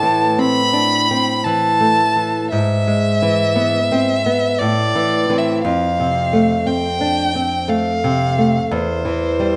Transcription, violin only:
0.00 0.40 A5 loud
0.39 1.46 B5 loud
1.44 2.50 A5 loud
2.51 4.60 E5 loud
4.59 5.40 D5 loud
5.38 5.62 E5 medium
5.63 6.68 F5 medium
6.66 7.71 G5 loud
7.69 8.73 F5 medium
8.71 9.56 C5 medium

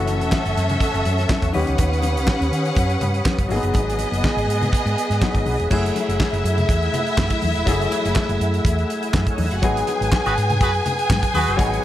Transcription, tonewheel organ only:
0.00 1.53 A4 medium
0.00 1.53 F#5 medium
0.00 1.53 C#6 medium
0.00 1.53 E6 medium
1.54 3.48 G4 medium
1.54 3.48 C#5 medium
1.54 3.48 B5 medium
1.54 5.67 D#6 medium
3.51 5.69 G#4 medium
3.51 5.69 F#5 medium
3.51 5.69 B5 medium
5.71 9.59 A3 medium
5.71 11.85 F#5 medium
5.71 11.85 G#5 medium
5.71 9.59 E6 medium
9.63 11.85 B4 medium
9.63 11.57 D#6 medium
11.59 11.85 C#6 medium

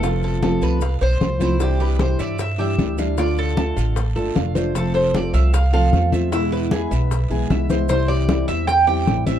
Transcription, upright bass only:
0.00 0.56 F1 medium
0.61 0.98 C2 medium
1.01 1.20 B1 medium
1.21 2.13 C2 medium
2.20 2.75 G2 medium
2.78 3.71 D2 medium
3.77 4.13 A1 medium
4.16 4.35 G1 medium
4.35 5.28 F1 medium
5.33 5.89 C2 loud
5.92 6.85 E2 medium
6.91 7.28 B1 loud
7.30 7.49 B1 medium
7.50 8.42 C2 medium
8.48 9.03 E2 medium
9.06 9.39 A1 medium

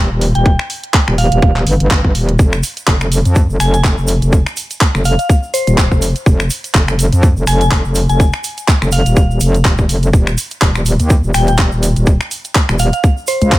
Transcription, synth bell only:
0.35 1.02 G5 medium
1.18 1.87 F5 medium
3.60 3.69 G#5 medium
3.74 3.80 G#5 medium
5.05 5.14 F5 loud
5.19 5.26 F5 medium
5.54 6.02 C5 loud
7.47 7.56 G#5 medium
7.61 7.68 G#5 medium
8.09 8.76 G#5 medium
8.92 9.61 F5 medium
11.34 11.43 G5 medium
11.48 11.55 G5 medium
12.80 12.88 F5 medium
12.93 13.00 F5 medium
13.28 13.59 C5 medium

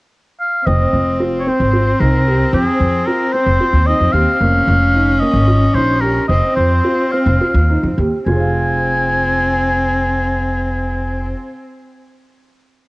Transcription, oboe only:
0.40 0.68 F5 medium
0.67 1.20 D#5 medium
1.39 1.50 C#5 medium
1.48 2.02 C5 medium
2.00 2.53 A#4 medium
2.54 3.08 G#4 medium
3.07 3.34 A#4 medium
3.33 3.88 C5 medium
3.86 4.14 D#5 medium
4.12 5.21 F5 loud
5.20 5.76 D#5 medium
5.74 6.02 C5 medium
6.01 6.27 A#4 medium
6.28 6.54 D#5 medium
6.56 7.13 C5 medium
7.12 7.98 F5 medium
8.27 11.32 G#5 medium

